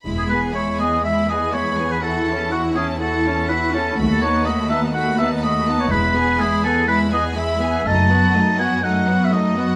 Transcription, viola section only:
\new Staff \with { instrumentName = "Viola section" } { \time 4/4 \key e \major \tempo 4 = 123 gis8 b8 gis8 b8 gis8 b8 gis8 b8 | e'8 cis'8 e'8 cis'8 e'8 cis'8 e'8 cis'8 | a8 b8 a8 b8 a8 b8 a8 b8 | gis8 b8 gis8 b8 gis8 b8 gis8 b8 |
a8 b8 a8 b8 a8 b8 a8 b8 | }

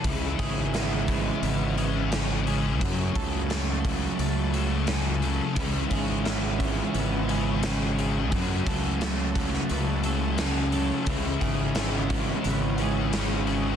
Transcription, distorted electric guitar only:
\new Staff \with { instrumentName = "Distorted electric guitar" } { \clef bass \time 4/4 \key cis \minor \tempo 4 = 87 <cis gis cis'>8 <gis cis'>8 <cis gis cis'>4. <gis cis'>8 <cis gis cis'>8 <gis cis'>8 | <fis, cis fis>8 <cis fis>8 <fis, cis fis>4. <cis fis>8 <fis, cis fis>8 <cis fis>8 | <cis gis cis'>8 <gis cis'>8 <cis gis cis'>4. <gis cis'>8 <cis gis cis'>8 <gis cis'>8 | <fis, cis fis>8 <cis fis>8 <fis, cis fis>4. <cis fis>8 <fis, cis fis>8 <cis fis>8 |
<cis gis cis'>8 <gis cis'>8 <cis gis cis'>4. <gis cis'>8 <cis gis cis'>8 <gis cis'>8 | }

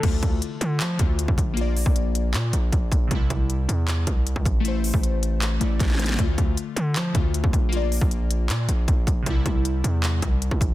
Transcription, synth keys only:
\new Staff \with { instrumentName = "Synth keys" } { \time 4/4 \key d \minor \tempo 4 = 156 <d a f'>2~ <d a f'>8 <d a f'>4. | <bes f' d''>1 | <c g e'>1 | <a e' c''>2~ <a e' c''>8 <a e' d''>4. |
<d a f'>2~ <d a f'>8 <d a f'>4. | <bes f' d''>1 | <c g e'>1 | }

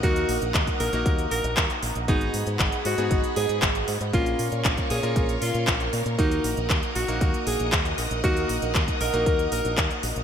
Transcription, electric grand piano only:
\new Staff \with { instrumentName = "Electric grand piano" } { \time 4/4 \key ees \minor \tempo 4 = 117 <bes ees' ges' bes'>4.~ <bes ees' ges' bes'>16 <bes ees' ges' bes'>2~ <bes ees' ges' bes'>16 | <ces' ees' ges' aes'>4.~ <ces' ees' ges' aes'>16 <ces' ees' ges' aes'>2~ <ces' ees' ges' aes'>16 | <bes des' f' bes'>4.~ <bes des' f' bes'>16 <bes des' f' bes'>2~ <bes des' f' bes'>16 | <bes ees' ges' bes'>4.~ <bes ees' ges' bes'>16 <bes ees' ges' bes'>2~ <bes ees' ges' bes'>16 |
<bes ees' ges' bes'>4.~ <bes ees' ges' bes'>16 <bes ees' ges' bes'>2~ <bes ees' ges' bes'>16 | }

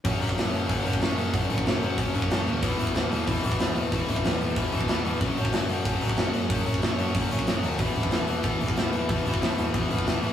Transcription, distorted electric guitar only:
\new Staff \with { instrumentName = "Distorted electric guitar" } { \clef bass \time 4/4 \key e \lydian \tempo 4 = 186 <fis, cis fis>8 <fis, cis fis>8 <fis, cis fis>8 <fis, cis fis>8 <fis, cis fis>8 <fis, cis fis>8 <fis, cis fis>8 <fis, cis fis>8 | <fis, cis fis>8 <fis, cis fis>8 <fis, cis fis>8 <fis, cis fis>8 <fis, cis fis>8 <fis, cis fis>8 <fis, cis fis>8 <fis, cis fis>8 | <e, b, e>8 <e, b, e>8 <e, b, e>8 <e, b, e>8 <e, b, e>8 <e, b, e>8 <e, b, e>8 <e, b, e>8 | <e, b, e>8 <e, b, e>8 <e, b, e>8 <e, b, e>8 <e, b, e>8 <e, b, e>8 <e, b, e>8 <e, b, e>8 |
<fis, cis fis>8 <fis, cis fis>8 <fis, cis fis>8 <fis, cis fis>8 <fis, cis fis>8 <fis, cis fis>8 <fis, cis fis>8 <fis, cis fis>8 | <fis, cis fis>8 <fis, cis fis>8 <fis, cis fis>8 <fis, cis fis>8 <fis, cis fis>8 <fis, cis fis>8 <fis, cis fis>8 <fis, cis fis>8 | <e, b, e>8 <e, b, e>8 <e, b, e>8 <e, b, e>8 <e, b, e>8 <e, b, e>8 <e, b, e>8 <e, b, e>8 | <e, b, e>8 <e, b, e>8 <e, b, e>8 <e, b, e>8 <e, b, e>8 <e, b, e>8 <e, b, e>8 <e, b, e>8 | }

